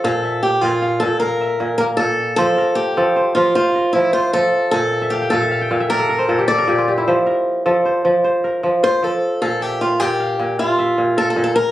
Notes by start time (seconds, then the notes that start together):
Already playing: F4 A#4
0.04 A#2 A4 F5
0.23 E5
0.43 G4
0.61 A#2 F4 D5
0.82 F5
1.00 A#2 A4
1.20 A#4 F5
1.41 E5
1.60 A#2
1.78 A#3 A#4
1.97 A#2 A4
2.36 F3 A4 C5
2.58 A#4
2.75 G4
2.97 F3 A4
3.16 C5
3.35 F3 F4
3.55 F4 C5
3.75 A#4
3.93 F3 E4
4.13 F4 C5
4.33 F3 A4
4.71 A#2 A4
5.02 E5
5.10 G4 F5
5.22 G5
5.30 A#2 A4 F5
5.42 E5
5.51 F5
5.61 G5
5.71 A#2 F5
5.80 E5
5.90 A#4 D5
5.99 A4
6.09 A#4
6.19 C5
6.29 A#2 A4
6.38 G4
6.48 A4 D5
6.58 A#4
6.68 A#2 G4
6.78 F4
6.88 G4
6.98 E4
7.08 F3 C5
7.26 A#4
7.66 F3 A4
7.85 C5
8.05 F3
8.24 C5
8.44 A#4
8.63 F3
8.83 F4 C5
9.03 F3 A4
9.42 A#2 A4 F5
9.61 G4 E5
9.81 F4
10.00 A#2 G4 D5
10.20 F5
10.39 A#2
10.59 F4 F5
10.79 E5
10.98 A#2
11.17 A4 A#4
11.30 A4
11.36 A#2
11.44 A4
11.56 A#4